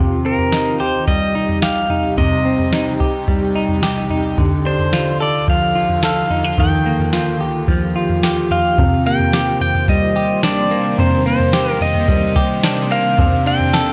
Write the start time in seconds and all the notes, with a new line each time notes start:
Already playing: C2 C3 D#4 G4
0.25 C4 A#4
0.39 floor tom
0.52 D#4, snare
0.80 G4 C5
1.08 G3 D#5, kick, floor tom
1.35 D#4
1.49 floor tom
1.62 G4 F5, snare
1.90 D#4, floor tom
2.18 C3 D#5, kick, floor tom
2.45 C4
2.59 floor tom
2.73 D#4, snare
3.00 G4, kick
3.28 G3, kick, floor tom
3.55 D#4
3.69 floor tom
3.83 G4, snare
4.10 D#4, floor tom
4.38 D2 D3 F4 A4, kick, floor tom
4.65 D4 C5
4.79 floor tom
4.93 F4, snare
5.20 A4 D5
5.48 F3 F5, kick, floor tom
5.75 F4
5.89 floor tom
6.03 A4 F5, snare
6.30 D#4, floor tom
6.44 F4
6.58 D#2 D#3 F4 G4 G5, kick, floor tom
6.86 A#3
6.99 floor tom
7.13 F4, snare
7.41 G4
7.68 F3, kick, floor tom
7.96 F4
8.10 floor tom
8.23 G4, snare
8.51 F4 F5, floor tom
8.78 C3 D#3 A#3 C5, kick, floor tom
9.06 A#3 G5, tambourine
9.20 floor tom
9.33 G4, snare, tambourine
9.61 G5, floor tom, tambourine
9.75 floor tom
9.88 G3 D#5, kick, floor tom, tambourine
10.16 G4, tambourine
10.43 D4 D5, snare, tambourine
10.71 A#3, tambourine
10.98 C3 C5, floor tom
11.26 A#3 C5, tambourine
11.40 floor tom
11.53 G4, snare, tambourine
11.72 A#4
11.81 D#5, floor tom, tambourine
11.95 floor tom
12.08 G3, kick, floor tom, tambourine
12.36 G4, kick, tambourine
12.64 D4, snare, tambourine
12.91 A#3 F5, tambourine
13.18 C3 A3 F4 D5, kick, floor tom
13.46 D4 G5, tambourine
13.60 floor tom
13.73 A4, snare, tambourine